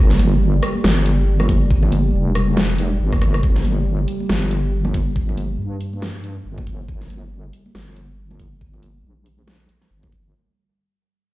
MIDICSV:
0, 0, Header, 1, 4, 480
1, 0, Start_track
1, 0, Key_signature, -2, "minor"
1, 0, Tempo, 431655
1, 1896, Time_signature, 4, 2, 24, 8
1, 12607, End_track
2, 0, Start_track
2, 0, Title_t, "Ambient pad"
2, 0, Program_c, 0, 92
2, 0, Note_on_c, 0, 55, 75
2, 11550, Note_off_c, 0, 55, 0
2, 12607, End_track
3, 0, Start_track
3, 0, Title_t, "Wobble bass"
3, 0, Program_c, 1, 39
3, 0, Note_on_c, 1, 31, 95
3, 680, Note_off_c, 1, 31, 0
3, 936, Note_on_c, 1, 31, 99
3, 2359, Note_off_c, 1, 31, 0
3, 2377, Note_on_c, 1, 29, 95
3, 3320, Note_off_c, 1, 29, 0
3, 3336, Note_on_c, 1, 31, 96
3, 3800, Note_off_c, 1, 31, 0
3, 3817, Note_on_c, 1, 31, 97
3, 4520, Note_off_c, 1, 31, 0
3, 4776, Note_on_c, 1, 31, 98
3, 6200, Note_off_c, 1, 31, 0
3, 6216, Note_on_c, 1, 43, 93
3, 7160, Note_off_c, 1, 43, 0
3, 7175, Note_on_c, 1, 31, 98
3, 7639, Note_off_c, 1, 31, 0
3, 7656, Note_on_c, 1, 31, 94
3, 8360, Note_off_c, 1, 31, 0
3, 8616, Note_on_c, 1, 31, 100
3, 10040, Note_off_c, 1, 31, 0
3, 10056, Note_on_c, 1, 34, 92
3, 10760, Note_off_c, 1, 34, 0
3, 11016, Note_on_c, 1, 31, 97
3, 11480, Note_off_c, 1, 31, 0
3, 12607, End_track
4, 0, Start_track
4, 0, Title_t, "Drums"
4, 109, Note_on_c, 9, 64, 77
4, 115, Note_on_c, 9, 38, 37
4, 214, Note_on_c, 9, 63, 97
4, 216, Note_on_c, 9, 42, 79
4, 220, Note_off_c, 9, 64, 0
4, 226, Note_off_c, 9, 38, 0
4, 326, Note_off_c, 9, 63, 0
4, 327, Note_off_c, 9, 42, 0
4, 697, Note_on_c, 9, 37, 61
4, 697, Note_on_c, 9, 42, 80
4, 808, Note_off_c, 9, 37, 0
4, 808, Note_off_c, 9, 42, 0
4, 836, Note_on_c, 9, 63, 67
4, 937, Note_on_c, 9, 38, 123
4, 948, Note_off_c, 9, 63, 0
4, 1048, Note_off_c, 9, 38, 0
4, 1076, Note_on_c, 9, 42, 37
4, 1177, Note_off_c, 9, 42, 0
4, 1177, Note_on_c, 9, 42, 78
4, 1289, Note_off_c, 9, 42, 0
4, 1555, Note_on_c, 9, 37, 50
4, 1555, Note_on_c, 9, 64, 80
4, 1559, Note_on_c, 9, 63, 97
4, 1657, Note_on_c, 9, 36, 63
4, 1657, Note_on_c, 9, 42, 78
4, 1666, Note_off_c, 9, 37, 0
4, 1666, Note_off_c, 9, 64, 0
4, 1670, Note_off_c, 9, 63, 0
4, 1768, Note_off_c, 9, 36, 0
4, 1768, Note_off_c, 9, 42, 0
4, 1897, Note_on_c, 9, 36, 115
4, 2008, Note_off_c, 9, 36, 0
4, 2030, Note_on_c, 9, 64, 82
4, 2133, Note_on_c, 9, 63, 92
4, 2137, Note_on_c, 9, 42, 74
4, 2141, Note_off_c, 9, 64, 0
4, 2244, Note_off_c, 9, 63, 0
4, 2248, Note_off_c, 9, 42, 0
4, 2617, Note_on_c, 9, 37, 59
4, 2617, Note_on_c, 9, 42, 78
4, 2728, Note_off_c, 9, 37, 0
4, 2728, Note_off_c, 9, 42, 0
4, 2752, Note_on_c, 9, 63, 65
4, 2857, Note_on_c, 9, 38, 114
4, 2863, Note_off_c, 9, 63, 0
4, 2968, Note_off_c, 9, 38, 0
4, 2996, Note_on_c, 9, 42, 36
4, 3097, Note_off_c, 9, 42, 0
4, 3097, Note_on_c, 9, 42, 72
4, 3208, Note_off_c, 9, 42, 0
4, 3475, Note_on_c, 9, 36, 103
4, 3475, Note_on_c, 9, 63, 86
4, 3476, Note_on_c, 9, 37, 50
4, 3480, Note_on_c, 9, 64, 74
4, 3577, Note_off_c, 9, 36, 0
4, 3577, Note_off_c, 9, 37, 0
4, 3577, Note_on_c, 9, 36, 59
4, 3577, Note_on_c, 9, 37, 48
4, 3577, Note_on_c, 9, 42, 76
4, 3586, Note_off_c, 9, 63, 0
4, 3591, Note_off_c, 9, 64, 0
4, 3688, Note_off_c, 9, 36, 0
4, 3689, Note_off_c, 9, 37, 0
4, 3689, Note_off_c, 9, 42, 0
4, 3716, Note_on_c, 9, 37, 58
4, 3817, Note_on_c, 9, 36, 115
4, 3828, Note_off_c, 9, 37, 0
4, 3928, Note_off_c, 9, 36, 0
4, 3956, Note_on_c, 9, 38, 35
4, 3963, Note_on_c, 9, 64, 71
4, 4052, Note_on_c, 9, 63, 80
4, 4057, Note_on_c, 9, 42, 72
4, 4067, Note_off_c, 9, 38, 0
4, 4074, Note_off_c, 9, 64, 0
4, 4163, Note_off_c, 9, 63, 0
4, 4168, Note_off_c, 9, 42, 0
4, 4536, Note_on_c, 9, 42, 74
4, 4648, Note_off_c, 9, 42, 0
4, 4675, Note_on_c, 9, 63, 60
4, 4776, Note_on_c, 9, 38, 112
4, 4786, Note_off_c, 9, 63, 0
4, 4887, Note_off_c, 9, 38, 0
4, 4916, Note_on_c, 9, 42, 34
4, 5017, Note_off_c, 9, 42, 0
4, 5017, Note_on_c, 9, 42, 71
4, 5128, Note_off_c, 9, 42, 0
4, 5385, Note_on_c, 9, 63, 78
4, 5390, Note_on_c, 9, 64, 79
4, 5497, Note_off_c, 9, 63, 0
4, 5497, Note_on_c, 9, 36, 61
4, 5497, Note_on_c, 9, 42, 72
4, 5501, Note_off_c, 9, 64, 0
4, 5608, Note_off_c, 9, 36, 0
4, 5608, Note_off_c, 9, 42, 0
4, 5736, Note_on_c, 9, 36, 109
4, 5848, Note_off_c, 9, 36, 0
4, 5881, Note_on_c, 9, 64, 68
4, 5973, Note_on_c, 9, 63, 81
4, 5978, Note_on_c, 9, 42, 69
4, 5992, Note_off_c, 9, 64, 0
4, 6084, Note_off_c, 9, 63, 0
4, 6089, Note_off_c, 9, 42, 0
4, 6457, Note_on_c, 9, 42, 73
4, 6568, Note_off_c, 9, 42, 0
4, 6597, Note_on_c, 9, 63, 61
4, 6698, Note_on_c, 9, 38, 108
4, 6709, Note_off_c, 9, 63, 0
4, 6809, Note_off_c, 9, 38, 0
4, 6836, Note_on_c, 9, 42, 34
4, 6937, Note_off_c, 9, 42, 0
4, 6937, Note_on_c, 9, 42, 72
4, 7048, Note_off_c, 9, 42, 0
4, 7312, Note_on_c, 9, 64, 79
4, 7315, Note_on_c, 9, 36, 100
4, 7323, Note_on_c, 9, 63, 84
4, 7416, Note_off_c, 9, 36, 0
4, 7416, Note_on_c, 9, 36, 59
4, 7417, Note_on_c, 9, 42, 73
4, 7423, Note_off_c, 9, 64, 0
4, 7434, Note_off_c, 9, 63, 0
4, 7527, Note_off_c, 9, 36, 0
4, 7528, Note_off_c, 9, 42, 0
4, 7656, Note_on_c, 9, 36, 108
4, 7767, Note_off_c, 9, 36, 0
4, 7794, Note_on_c, 9, 64, 71
4, 7796, Note_on_c, 9, 38, 33
4, 7897, Note_on_c, 9, 42, 73
4, 7897, Note_on_c, 9, 63, 92
4, 7905, Note_off_c, 9, 64, 0
4, 7907, Note_off_c, 9, 38, 0
4, 8008, Note_off_c, 9, 42, 0
4, 8008, Note_off_c, 9, 63, 0
4, 8377, Note_on_c, 9, 42, 75
4, 8488, Note_off_c, 9, 42, 0
4, 8517, Note_on_c, 9, 63, 63
4, 8618, Note_on_c, 9, 38, 102
4, 8628, Note_off_c, 9, 63, 0
4, 8729, Note_off_c, 9, 38, 0
4, 8755, Note_on_c, 9, 42, 35
4, 8857, Note_off_c, 9, 42, 0
4, 8857, Note_on_c, 9, 42, 73
4, 8969, Note_off_c, 9, 42, 0
4, 9237, Note_on_c, 9, 63, 81
4, 9241, Note_on_c, 9, 64, 68
4, 9336, Note_on_c, 9, 36, 56
4, 9337, Note_on_c, 9, 42, 73
4, 9348, Note_off_c, 9, 63, 0
4, 9352, Note_off_c, 9, 64, 0
4, 9448, Note_off_c, 9, 36, 0
4, 9448, Note_off_c, 9, 42, 0
4, 9576, Note_on_c, 9, 36, 109
4, 9688, Note_off_c, 9, 36, 0
4, 9714, Note_on_c, 9, 64, 77
4, 9814, Note_on_c, 9, 63, 78
4, 9816, Note_on_c, 9, 42, 76
4, 9825, Note_off_c, 9, 64, 0
4, 9925, Note_off_c, 9, 63, 0
4, 9927, Note_off_c, 9, 42, 0
4, 10296, Note_on_c, 9, 42, 77
4, 10408, Note_off_c, 9, 42, 0
4, 10436, Note_on_c, 9, 63, 56
4, 10536, Note_on_c, 9, 38, 106
4, 10547, Note_off_c, 9, 63, 0
4, 10648, Note_off_c, 9, 38, 0
4, 10675, Note_on_c, 9, 42, 37
4, 10775, Note_off_c, 9, 42, 0
4, 10775, Note_on_c, 9, 42, 77
4, 10887, Note_off_c, 9, 42, 0
4, 10914, Note_on_c, 9, 38, 35
4, 11026, Note_off_c, 9, 38, 0
4, 11152, Note_on_c, 9, 64, 80
4, 11155, Note_on_c, 9, 36, 97
4, 11160, Note_on_c, 9, 63, 84
4, 11256, Note_on_c, 9, 42, 78
4, 11257, Note_off_c, 9, 36, 0
4, 11257, Note_on_c, 9, 36, 56
4, 11263, Note_off_c, 9, 64, 0
4, 11271, Note_off_c, 9, 63, 0
4, 11367, Note_off_c, 9, 42, 0
4, 11368, Note_off_c, 9, 36, 0
4, 12607, End_track
0, 0, End_of_file